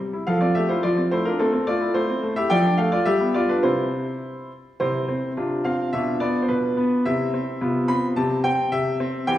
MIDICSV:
0, 0, Header, 1, 2, 480
1, 0, Start_track
1, 0, Key_signature, 0, "major"
1, 0, Tempo, 559180
1, 236, Time_signature, 2, 2, 24, 8
1, 2632, Tempo, 579710
1, 4072, Tempo, 564440
1, 5992, Tempo, 554017
1, 8001, End_track
2, 0, Start_track
2, 0, Title_t, "Grand piano"
2, 0, Program_c, 0, 0
2, 0, Note_on_c, 0, 55, 41
2, 114, Note_on_c, 0, 64, 37
2, 121, Note_off_c, 0, 55, 0
2, 229, Note_on_c, 0, 77, 71
2, 234, Note_on_c, 0, 53, 52
2, 236, Note_off_c, 0, 64, 0
2, 239, Note_on_c, 0, 69, 57
2, 348, Note_on_c, 0, 74, 60
2, 350, Note_off_c, 0, 69, 0
2, 352, Note_off_c, 0, 53, 0
2, 352, Note_on_c, 0, 60, 39
2, 354, Note_off_c, 0, 77, 0
2, 359, Note_on_c, 0, 65, 45
2, 470, Note_off_c, 0, 65, 0
2, 471, Note_on_c, 0, 76, 72
2, 474, Note_off_c, 0, 74, 0
2, 478, Note_on_c, 0, 57, 41
2, 481, Note_off_c, 0, 60, 0
2, 482, Note_on_c, 0, 67, 55
2, 591, Note_on_c, 0, 72, 59
2, 592, Note_off_c, 0, 67, 0
2, 595, Note_off_c, 0, 76, 0
2, 596, Note_on_c, 0, 65, 37
2, 604, Note_on_c, 0, 64, 45
2, 605, Note_off_c, 0, 57, 0
2, 709, Note_off_c, 0, 65, 0
2, 713, Note_on_c, 0, 74, 71
2, 714, Note_off_c, 0, 64, 0
2, 716, Note_off_c, 0, 72, 0
2, 718, Note_on_c, 0, 53, 50
2, 722, Note_on_c, 0, 65, 54
2, 836, Note_off_c, 0, 53, 0
2, 838, Note_on_c, 0, 60, 43
2, 859, Note_off_c, 0, 74, 0
2, 945, Note_off_c, 0, 65, 0
2, 956, Note_on_c, 0, 72, 64
2, 962, Note_on_c, 0, 57, 42
2, 965, Note_off_c, 0, 60, 0
2, 966, Note_on_c, 0, 64, 55
2, 1075, Note_off_c, 0, 64, 0
2, 1075, Note_on_c, 0, 70, 63
2, 1079, Note_off_c, 0, 72, 0
2, 1081, Note_on_c, 0, 65, 42
2, 1086, Note_on_c, 0, 62, 49
2, 1088, Note_off_c, 0, 57, 0
2, 1195, Note_off_c, 0, 62, 0
2, 1195, Note_on_c, 0, 69, 70
2, 1197, Note_on_c, 0, 57, 53
2, 1198, Note_off_c, 0, 70, 0
2, 1201, Note_off_c, 0, 65, 0
2, 1204, Note_on_c, 0, 60, 58
2, 1301, Note_off_c, 0, 60, 0
2, 1314, Note_on_c, 0, 60, 44
2, 1315, Note_off_c, 0, 57, 0
2, 1433, Note_on_c, 0, 74, 78
2, 1436, Note_off_c, 0, 69, 0
2, 1440, Note_on_c, 0, 57, 41
2, 1442, Note_off_c, 0, 60, 0
2, 1443, Note_on_c, 0, 65, 57
2, 1554, Note_on_c, 0, 64, 44
2, 1564, Note_off_c, 0, 57, 0
2, 1662, Note_off_c, 0, 65, 0
2, 1665, Note_off_c, 0, 64, 0
2, 1668, Note_on_c, 0, 72, 72
2, 1673, Note_off_c, 0, 74, 0
2, 1675, Note_on_c, 0, 57, 52
2, 1677, Note_on_c, 0, 64, 49
2, 1791, Note_off_c, 0, 57, 0
2, 1798, Note_on_c, 0, 60, 47
2, 1914, Note_on_c, 0, 57, 51
2, 1921, Note_off_c, 0, 60, 0
2, 1994, Note_off_c, 0, 72, 0
2, 2008, Note_off_c, 0, 64, 0
2, 2027, Note_on_c, 0, 76, 82
2, 2031, Note_on_c, 0, 64, 47
2, 2036, Note_on_c, 0, 67, 62
2, 2039, Note_off_c, 0, 57, 0
2, 2144, Note_on_c, 0, 79, 95
2, 2145, Note_off_c, 0, 67, 0
2, 2149, Note_off_c, 0, 76, 0
2, 2151, Note_off_c, 0, 64, 0
2, 2152, Note_on_c, 0, 53, 67
2, 2154, Note_on_c, 0, 74, 77
2, 2266, Note_on_c, 0, 62, 43
2, 2268, Note_off_c, 0, 53, 0
2, 2375, Note_off_c, 0, 74, 0
2, 2382, Note_on_c, 0, 77, 68
2, 2387, Note_off_c, 0, 79, 0
2, 2387, Note_on_c, 0, 57, 48
2, 2392, Note_on_c, 0, 69, 51
2, 2394, Note_off_c, 0, 62, 0
2, 2503, Note_off_c, 0, 69, 0
2, 2505, Note_on_c, 0, 74, 74
2, 2507, Note_off_c, 0, 77, 0
2, 2514, Note_on_c, 0, 65, 55
2, 2515, Note_off_c, 0, 57, 0
2, 2622, Note_on_c, 0, 76, 89
2, 2625, Note_off_c, 0, 65, 0
2, 2628, Note_on_c, 0, 55, 67
2, 2629, Note_off_c, 0, 74, 0
2, 2633, Note_on_c, 0, 67, 66
2, 2744, Note_off_c, 0, 55, 0
2, 2746, Note_on_c, 0, 59, 42
2, 2839, Note_off_c, 0, 76, 0
2, 2852, Note_off_c, 0, 67, 0
2, 2861, Note_on_c, 0, 74, 72
2, 2867, Note_on_c, 0, 55, 45
2, 2871, Note_on_c, 0, 65, 62
2, 2873, Note_off_c, 0, 59, 0
2, 2977, Note_off_c, 0, 65, 0
2, 2984, Note_off_c, 0, 74, 0
2, 2984, Note_on_c, 0, 71, 62
2, 2989, Note_on_c, 0, 65, 43
2, 2993, Note_off_c, 0, 55, 0
2, 2996, Note_on_c, 0, 62, 48
2, 3098, Note_on_c, 0, 72, 67
2, 3102, Note_on_c, 0, 48, 45
2, 3104, Note_off_c, 0, 62, 0
2, 3104, Note_on_c, 0, 60, 42
2, 3106, Note_off_c, 0, 71, 0
2, 3106, Note_on_c, 0, 64, 48
2, 3109, Note_off_c, 0, 65, 0
2, 3442, Note_off_c, 0, 48, 0
2, 3492, Note_off_c, 0, 60, 0
2, 3799, Note_off_c, 0, 64, 0
2, 3828, Note_off_c, 0, 72, 0
2, 4066, Note_on_c, 0, 72, 71
2, 4070, Note_on_c, 0, 48, 60
2, 4070, Note_on_c, 0, 60, 43
2, 4070, Note_on_c, 0, 64, 36
2, 4298, Note_off_c, 0, 60, 0
2, 4304, Note_off_c, 0, 48, 0
2, 4310, Note_on_c, 0, 60, 46
2, 4500, Note_off_c, 0, 72, 0
2, 4518, Note_off_c, 0, 64, 0
2, 4544, Note_off_c, 0, 60, 0
2, 4552, Note_on_c, 0, 62, 39
2, 4554, Note_on_c, 0, 48, 52
2, 4554, Note_on_c, 0, 65, 38
2, 4785, Note_off_c, 0, 48, 0
2, 4787, Note_on_c, 0, 77, 71
2, 4792, Note_on_c, 0, 60, 49
2, 4997, Note_off_c, 0, 62, 0
2, 4998, Note_off_c, 0, 65, 0
2, 5023, Note_off_c, 0, 60, 0
2, 5026, Note_on_c, 0, 76, 77
2, 5028, Note_off_c, 0, 77, 0
2, 5032, Note_on_c, 0, 47, 51
2, 5032, Note_on_c, 0, 62, 41
2, 5032, Note_on_c, 0, 65, 39
2, 5259, Note_on_c, 0, 74, 72
2, 5262, Note_off_c, 0, 47, 0
2, 5266, Note_off_c, 0, 76, 0
2, 5266, Note_on_c, 0, 59, 49
2, 5424, Note_off_c, 0, 74, 0
2, 5448, Note_on_c, 0, 72, 47
2, 5498, Note_off_c, 0, 59, 0
2, 5500, Note_on_c, 0, 71, 67
2, 5504, Note_on_c, 0, 47, 47
2, 5507, Note_off_c, 0, 72, 0
2, 5741, Note_off_c, 0, 47, 0
2, 5744, Note_on_c, 0, 59, 50
2, 5958, Note_off_c, 0, 62, 0
2, 5958, Note_off_c, 0, 65, 0
2, 5981, Note_off_c, 0, 59, 0
2, 5985, Note_on_c, 0, 76, 76
2, 5988, Note_off_c, 0, 71, 0
2, 5990, Note_on_c, 0, 60, 42
2, 5991, Note_on_c, 0, 48, 61
2, 5992, Note_on_c, 0, 64, 43
2, 6217, Note_off_c, 0, 60, 0
2, 6224, Note_off_c, 0, 48, 0
2, 6230, Note_on_c, 0, 60, 45
2, 6436, Note_off_c, 0, 64, 0
2, 6462, Note_off_c, 0, 60, 0
2, 6468, Note_on_c, 0, 48, 57
2, 6468, Note_on_c, 0, 65, 41
2, 6469, Note_on_c, 0, 59, 44
2, 6671, Note_off_c, 0, 76, 0
2, 6700, Note_off_c, 0, 48, 0
2, 6702, Note_on_c, 0, 83, 86
2, 6707, Note_on_c, 0, 60, 56
2, 6848, Note_off_c, 0, 83, 0
2, 6915, Note_off_c, 0, 59, 0
2, 6915, Note_off_c, 0, 65, 0
2, 6940, Note_off_c, 0, 60, 0
2, 6944, Note_on_c, 0, 81, 88
2, 6952, Note_on_c, 0, 48, 60
2, 6952, Note_on_c, 0, 67, 40
2, 6953, Note_on_c, 0, 60, 42
2, 7164, Note_off_c, 0, 81, 0
2, 7177, Note_off_c, 0, 60, 0
2, 7184, Note_on_c, 0, 79, 86
2, 7185, Note_off_c, 0, 48, 0
2, 7190, Note_on_c, 0, 60, 52
2, 7424, Note_off_c, 0, 60, 0
2, 7427, Note_on_c, 0, 76, 85
2, 7429, Note_off_c, 0, 79, 0
2, 7433, Note_on_c, 0, 48, 54
2, 7665, Note_off_c, 0, 48, 0
2, 7671, Note_on_c, 0, 60, 59
2, 7878, Note_off_c, 0, 67, 0
2, 7898, Note_off_c, 0, 60, 0
2, 7906, Note_on_c, 0, 79, 94
2, 7909, Note_off_c, 0, 76, 0
2, 7911, Note_on_c, 0, 52, 66
2, 7911, Note_on_c, 0, 60, 51
2, 7913, Note_on_c, 0, 67, 46
2, 8001, Note_off_c, 0, 52, 0
2, 8001, Note_off_c, 0, 60, 0
2, 8001, Note_off_c, 0, 67, 0
2, 8001, Note_off_c, 0, 79, 0
2, 8001, End_track
0, 0, End_of_file